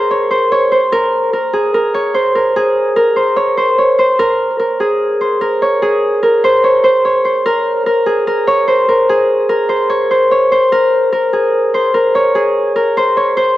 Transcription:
0.00 1.53 G#4 medium
0.00 0.92 A#4 medium
0.00 0.17 C5 medium
0.11 0.37 C#5 medium
0.31 0.58 C5 medium
0.52 0.78 C#5 medium
0.72 2.00 C5 medium
0.92 1.33 A#4 loud
1.33 1.74 A#4 medium
1.53 2.56 G#4 medium
1.74 2.35 A#4 medium
1.94 2.20 C#5 medium
2.14 3.16 C5 medium
2.35 2.96 A#4 medium
2.56 4.80 G#4 medium
2.96 4.19 A#4 medium
3.16 3.43 C5 medium
3.37 3.63 C#5 medium
3.57 3.84 C5 medium
3.78 4.05 C#5 medium
3.99 5.20 C5 medium
4.19 4.59 A#4 loud
4.59 5.41 A#4 medium
4.80 5.82 G#4 medium
5.21 5.68 C5 medium
5.41 6.22 A#4 medium
5.62 6.50 C#5 medium
5.82 8.06 G#4 medium
6.23 7.45 A#4 medium
6.44 6.70 C5 medium
6.64 6.90 C#5 medium
6.84 7.11 C5 medium
7.05 7.31 C#5 medium
7.25 8.53 C5 medium
7.46 7.86 A#4 loud
7.86 8.27 A#4 medium
8.06 9.09 G#4 medium
8.27 8.88 A#4 medium
8.47 8.74 C#5 medium
8.68 9.69 C5 medium
8.89 9.49 A#4 medium
9.09 11.33 G#4 medium
9.49 10.72 A#4 medium
9.69 9.96 C5 medium
9.90 10.17 C#5 medium
10.11 10.37 C5 medium
10.31 10.58 C#5 medium
10.52 11.74 C5 medium
10.72 11.12 A#4 loud
11.13 11.94 A#4 medium
11.33 12.35 G#4 medium
11.74 12.21 C5 medium
11.94 12.75 A#4 medium
12.15 13.03 C#5 medium
12.35 13.57 G#4 medium
12.76 13.57 A#4 medium
12.97 13.23 C5 medium
13.17 13.43 C#5 medium
13.37 13.57 C5 medium

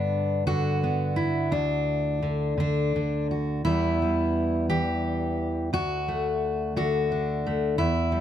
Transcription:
0.00 1.48 G2 medium
0.00 0.46 D3 medium
0.00 0.82 B3 soft
0.00 0.46 D4 medium
0.47 2.21 D3 medium
0.47 1.51 F#4 loud
0.84 1.48 B3 medium
1.16 1.52 E4 medium
1.51 3.65 D2 medium
1.51 2.59 D4 medium
2.22 2.56 D3 soft
2.58 2.94 D3 medium
2.58 3.31 D4 medium
2.96 3.66 D3 medium
3.31 3.61 F#4 soft
3.65 5.69 E2 medium
3.65 4.69 E3 soft
3.65 4.01 G3 soft
3.65 5.70 B3 soft
3.65 4.69 E4 loud
4.02 5.74 G3 soft
4.70 5.69 E3 medium
4.70 5.73 G4 loud
5.73 7.78 D2 medium
5.73 6.76 F#4 loud
6.08 7.45 A3 medium
6.76 7.78 D3 medium
6.76 7.78 F#4 medium
7.12 7.75 D4 medium
7.46 7.75 A3 medium
7.78 8.21 E2 medium
7.78 8.21 E4 loud
8.12 8.21 G3 medium

